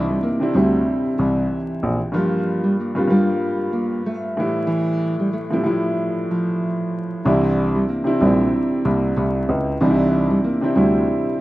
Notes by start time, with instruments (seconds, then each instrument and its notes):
Already playing: grand piano C2, upright piano C3 C4 D4 D#4 E4
0.09 nylon-string guitar G3
0.23 nylon-string guitar A#3
0.40 upright piano C3 C4 D4 E4, nylon-string guitar C4
0.53 grand piano D2, upright piano C3 C4 D4 E4, nylon-string guitar G3
1.18 grand piano C2, nylon-string guitar E3
1.83 grand piano A#1
2.12 upright piano G2 G3 A#3 F4, nylon-string guitar F3
2.63 nylon-string guitar G3
2.80 nylon-string guitar A#3
2.95 upright piano G2 G3 A#3 F4, nylon-string guitar C4
3.08 upright piano G2 G3 A#3 F4, nylon-string guitar G3
3.73 nylon-string guitar A#3
4.06 nylon-string guitar A3
4.37 upright piano A2 E3 G3 E4
4.67 nylon-string guitar E3
5.20 nylon-string guitar G3
5.33 nylon-string guitar A3
5.50 upright piano A2 F3 G3 E4, nylon-string guitar C4
5.63 upright piano A2 F3 G3 E4, nylon-string guitar A3
6.31 nylon-string guitar F3
7.25 grand piano C2, upright piano C3 C4 D4 E4, nylon-string guitar E3
7.75 nylon-string guitar G3
7.89 nylon-string guitar A#3
8.04 upright piano C3 C4 D4 E4, nylon-string guitar C4
8.20 grand piano A#1, upright piano C3 C4 D4 E4, nylon-string guitar G3
8.85 grand piano C2, nylon-string guitar A#3
9.16 grand piano C2, nylon-string guitar A3
9.49 grand piano C#2
9.80 grand piano C2, upright piano C3 C4 D4 D#4, nylon-string guitar E3
9.90 upright piano E4
10.30 nylon-string guitar G3
10.44 nylon-string guitar A#3
10.61 upright piano C3 C4 D4 E4, nylon-string guitar C4
10.75 grand piano D2, upright piano C3 C4 D4 E4, nylon-string guitar G3